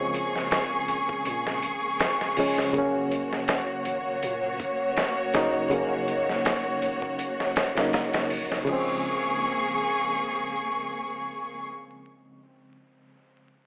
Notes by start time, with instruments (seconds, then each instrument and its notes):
Already playing: 808-style bass A#1, reed electric piano C#3 F3 G#3 C4 C#4, string section A#3 G#4 C#6
0.14 closed hi-hat
0.36 snare
0.51 snare, closed hi-hat
0.88 808-style bass G#1, closed hi-hat
1.09 kick
1.25 808-style bass A#2, closed hi-hat
1.47 snare
1.62 808-style bass G#1, closed hi-hat
2.00 snare, closed hi-hat
2.21 snare
2.37 reed electric piano C#3 F3 G#3 C#4, open hi-hat
2.58 snare
2.73 808-style bass A#1, reed electric piano C#3 F#3 A#3, string section A#3 F#4 C#5, kick, closed hi-hat
2.78 reed electric piano C#4
3.12 closed hi-hat
3.33 snare
3.48 snare, closed hi-hat
3.85 808-style bass G#1, closed hi-hat
4.23 808-style bass A#2, closed hi-hat
4.60 808-style bass G#1, kick, closed hi-hat
4.97 snare, closed hi-hat
5.34 reed electric piano C#3 F#3 A#3 D#4, snare, closed hi-hat
5.70 808-style bass A#1, reed electric piano C#3 F#3 A#3, closed hi-hat
5.75 reed electric piano C#4
6.08 closed hi-hat
6.29 snare
6.45 snare, closed hi-hat
6.82 808-style bass G#1, closed hi-hat
7.02 kick
7.19 closed hi-hat
7.40 snare
7.56 snare, closed hi-hat
7.75 808-style bass A#1, reed electric piano C#3 F#3 A#3, snare, closed hi-hat
7.80 reed electric piano D#4
7.93 snare, closed hi-hat
8.13 snare, closed hi-hat
8.30 808-style bass A#1, open hi-hat
8.52 snare
8.65 808-style bass A#1, reed electric piano C#3 F3, string section A#3 G#4 C#6, kick, crash
8.70 reed electric piano G#3 C4